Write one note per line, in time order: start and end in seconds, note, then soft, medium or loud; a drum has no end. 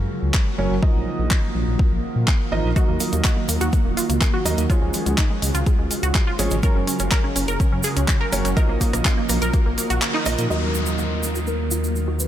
0.00 0.79 C#3 medium
0.00 0.56 F#3 medium
0.00 0.81 F#3 medium
0.00 4.66 A#3 medium
0.00 0.56 C#4 medium
0.00 0.81 F#4 medium
0.00 0.56 A#4 medium
0.00 0.56 C#5 medium
0.23 0.31 C#2 medium
0.34 kick loud
0.34 clap loud
0.58 0.67 F#1 medium
0.58 0.73 F#3 medium
0.58 0.73 C#4 medium
0.58 0.73 A#4 medium
0.58 0.73 C#5 medium
0.71 0.79 F#1 medium
0.83 4.66 D#3 medium
0.83 2.49 F3 medium
0.83 2.74 F3 medium
0.83 2.49 D#4 medium
0.83 2.74 F4 medium
0.83 2.49 A#4 medium
0.83 2.49 D#5 medium
0.83 kick loud
0.95 1.03 A#1 medium
1.19 1.27 A#1 medium
1.31 kick loud
1.31 clap loud
1.55 1.64 A#1 medium
1.68 1.76 A#1 medium
1.79 kick loud
1.92 2.00 A#1 medium
2.16 2.24 A#2 medium
2.27 kick loud
2.27 clap loud
2.52 2.61 G#1 medium
2.52 2.67 F3 medium
2.52 2.67 D#4 medium
2.52 2.67 A#4 medium
2.52 2.67 D#5 medium
2.64 2.73 A#1 medium
2.76 4.43 F#3 medium
2.76 4.68 F#3 medium
2.76 4.43 D#4 medium
2.76 2.85 F#4 medium
2.76 4.68 F#4 medium
2.76 4.43 A#4 medium
2.76 4.43 D#5 medium
2.76 kick loud
2.76 closed hi-hat soft
2.76 shaker soft
2.88 2.97 D#2 medium
2.88 2.97 A#3 medium
3.00 3.10 A#3 medium
3.00 open hi-hat loud
3.00 shaker medium
3.13 3.21 D#2 medium
3.13 3.22 A#3 medium
3.13 closed hi-hat medium
3.13 shaker medium
3.24 3.34 F#4 medium
3.24 kick loud
3.24 clap loud
3.24 closed hi-hat soft
3.24 shaker soft
3.37 3.46 A#3 medium
3.49 3.57 D#2 medium
3.49 3.58 A#3 medium
3.49 open hi-hat medium
3.49 shaker medium
3.61 3.69 D#2 medium
3.61 3.70 F#4 medium
3.61 closed hi-hat medium
3.61 shaker medium
3.73 3.82 A#3 medium
3.73 kick loud
3.73 closed hi-hat soft
3.73 shaker soft
3.85 3.94 D#1 medium
3.85 3.94 A#3 medium
3.97 4.06 F4 medium
3.97 open hi-hat medium
3.97 shaker medium
4.09 4.18 C#2 medium
4.09 4.18 A#3 medium
4.09 closed hi-hat medium
4.09 shaker medium
4.21 4.31 A#3 medium
4.21 kick loud
4.21 clap loud
4.21 closed hi-hat soft
4.21 shaker soft
4.34 4.43 F#4 medium
4.45 4.54 D#2 medium
4.45 4.60 F#3 medium
4.45 4.55 A#3 medium
4.45 4.60 D#4 medium
4.45 4.60 A#4 medium
4.45 4.60 D#5 medium
4.45 open hi-hat medium
4.45 shaker medium
4.58 4.66 D#2 medium
4.58 4.67 A#3 medium
4.58 closed hi-hat medium
4.58 shaker medium
4.70 8.53 C#3 medium
4.70 6.61 F3 medium
4.70 6.36 F3 medium
4.70 6.61 G#3 medium
4.70 6.36 C#4 medium
4.70 6.61 F4 medium
4.70 4.79 F4 medium
4.70 6.36 G#4 medium
4.70 6.36 C#5 medium
4.70 kick loud
4.70 closed hi-hat medium
4.70 shaker soft
4.82 4.90 C#2 medium
4.82 4.91 G#3 medium
4.94 5.03 G#3 medium
4.94 open hi-hat medium
4.94 shaker medium
5.06 5.15 C#2 medium
5.06 5.15 G#3 medium
5.06 closed hi-hat medium
5.06 shaker soft
5.18 5.27 D#4 medium
5.18 kick loud
5.18 clap loud
5.18 closed hi-hat medium
5.18 shaker soft
5.30 5.39 G#3 medium
5.42 5.51 C#2 medium
5.42 5.52 G#3 medium
5.42 open hi-hat medium
5.42 shaker medium
5.54 5.63 C#2 medium
5.54 5.63 F4 medium
5.54 closed hi-hat medium
5.54 shaker soft
5.66 5.76 G#3 medium
5.66 kick loud
5.66 closed hi-hat medium
5.66 shaker soft
5.79 5.87 C#2 medium
5.79 5.88 G#3 medium
5.91 6.00 G#3 medium
5.91 open hi-hat loud
5.91 shaker medium
6.03 6.11 C#2 medium
6.03 6.12 F#4 medium
6.03 closed hi-hat medium
6.03 shaker medium
6.15 6.24 G#3 medium
6.15 kick loud
6.15 clap loud
6.15 closed hi-hat medium
6.15 shaker soft
6.27 6.36 F4 loud
6.39 6.48 G#1 medium
6.39 6.54 F3 medium
6.39 6.48 G#3 medium
6.39 6.54 C#4 medium
6.39 6.54 G#4 medium
6.39 6.54 C#5 medium
6.39 open hi-hat medium
6.39 shaker medium
6.51 6.60 G#1 medium
6.51 6.60 G#3 medium
6.51 closed hi-hat medium
6.51 shaker soft
6.63 8.30 F#3 medium
6.63 8.55 F#3 medium
6.63 8.55 A#3 medium
6.63 8.30 C#4 medium
6.63 8.55 F#4 medium
6.63 8.30 A#4 medium
6.63 6.73 A#4 medium
6.63 8.30 C#5 medium
6.63 kick loud
6.63 closed hi-hat medium
6.63 shaker soft
6.76 6.84 F#1 medium
6.76 6.84 C#4 medium
6.87 6.97 C#4 medium
6.87 open hi-hat medium
6.87 shaker medium
6.99 7.08 F#1 medium
6.99 7.09 C#4 medium
6.99 closed hi-hat medium
6.99 shaker medium
7.11 7.21 A#4 medium
7.11 kick loud
7.11 clap loud
7.11 closed hi-hat medium
7.11 shaker soft
7.24 7.33 C#4 medium
7.36 7.45 F#1 medium
7.36 7.45 C#4 medium
7.36 open hi-hat medium
7.36 shaker medium
7.48 7.56 F#1 medium
7.48 7.57 A#4 medium
7.48 closed hi-hat medium
7.48 shaker medium
7.60 7.69 C#4 medium
7.60 kick loud
7.60 closed hi-hat medium
7.60 shaker soft
7.72 7.81 F#2 medium
7.72 7.81 C#4 medium
7.83 7.94 G#4 medium
7.83 open hi-hat medium
7.83 shaker medium
7.97 8.05 C#2 medium
7.97 8.05 C#4 medium
7.97 closed hi-hat medium
7.97 shaker soft
8.08 8.18 C#4 medium
8.08 kick loud
8.08 clap loud
8.08 closed hi-hat medium
8.08 shaker soft
8.21 8.30 A#4 loud
8.32 8.41 F#1 medium
8.32 8.47 F#3 medium
8.32 8.47 C#4 medium
8.32 8.42 C#4 medium
8.32 8.47 A#4 medium
8.32 8.47 C#5 medium
8.32 open hi-hat medium
8.32 shaker medium
8.45 8.53 F#1 medium
8.45 8.54 C#4 medium
8.45 closed hi-hat medium
8.45 shaker soft
8.57 10.48 D#3 medium
8.57 10.23 F3 medium
8.57 10.48 F3 medium
8.57 10.48 A#3 medium
8.57 10.23 D#4 medium
8.57 10.48 F4 medium
8.57 10.23 A#4 medium
8.57 8.66 A#4 medium
8.57 10.23 D#5 medium
8.57 kick loud
8.57 closed hi-hat medium
8.57 shaker soft
8.69 8.77 A#1 medium
8.69 8.78 A#3 medium
8.81 8.90 A#3 medium
8.81 kick medium
8.81 open hi-hat loud
8.81 shaker medium
8.93 9.02 A#1 medium
8.93 9.02 A#3 medium
8.93 cross-stick medium
8.93 closed hi-hat medium
8.93 shaker medium
9.05 9.15 F4 medium
9.05 kick loud
9.05 clap loud
9.05 closed hi-hat medium
9.05 shaker soft
9.18 9.26 A#3 medium
9.29 9.38 A#1 medium
9.29 9.39 A#3 medium
9.29 cross-stick medium
9.29 open hi-hat medium
9.29 shaker medium
9.42 9.50 A#1 medium
9.42 9.51 A#4 loud
9.42 closed hi-hat medium
9.42 shaker soft
9.53 9.63 A#3 medium
9.53 kick loud
9.53 closed hi-hat medium
9.53 shaker soft
9.66 9.74 A#1 medium
9.66 9.75 A#3 medium
9.78 9.87 A#3 medium
9.78 open hi-hat medium
9.78 shaker medium
9.90 9.98 A#1 medium
9.90 9.99 F#4 medium
9.90 closed hi-hat medium
9.90 shaker soft
10.02 10.11 A#3 medium
10.02 clap loud
10.02 closed hi-hat medium
10.02 shaker soft
10.14 10.23 D#4 loud
10.14 clap soft
10.26 10.35 A#1 medium
10.26 10.41 F3 medium
10.26 10.35 A#3 medium
10.26 10.41 D#4 medium
10.26 10.41 A#4 medium
10.26 10.41 D#5 loud
10.26 open hi-hat medium
10.26 shaker medium
10.38 10.47 A#2 medium
10.38 10.47 A#3 medium
10.38 closed hi-hat medium
10.38 shaker soft
10.50 12.28 D#2 medium
10.50 12.28 D#3 medium
10.50 12.28 F#3 medium
10.50 12.28 A#3 medium
10.50 12.28 D#4 medium
10.50 12.28 F#4 medium
10.50 10.60 F#4 medium
10.50 12.28 A#4 medium
10.50 11.38 A#4 loud
10.50 12.28 D#5 medium
10.50 downlifter medium
10.50 shaker soft
10.63 10.72 A#3 medium
10.74 10.84 A#3 medium
10.74 shaker medium
10.86 10.96 A#3 medium
10.86 shaker soft
10.98 11.08 F#4 medium
10.98 shaker soft
11.11 11.20 A#3 medium
11.23 11.32 A#3 medium
11.23 shaker medium
11.35 11.44 F#4 medium
11.35 shaker soft
11.47 11.56 A#3 medium
11.47 12.10 A#4 medium
11.47 shaker soft
11.60 11.68 A#3 medium
11.71 11.81 F4 medium
11.71 shaker medium
11.84 11.93 A#3 medium
11.84 shaker soft
11.95 12.05 A#3 medium
11.95 shaker soft
12.08 12.17 F#4 medium
12.20 12.28 A#3 medium
12.20 12.28 B4 medium
12.20 shaker medium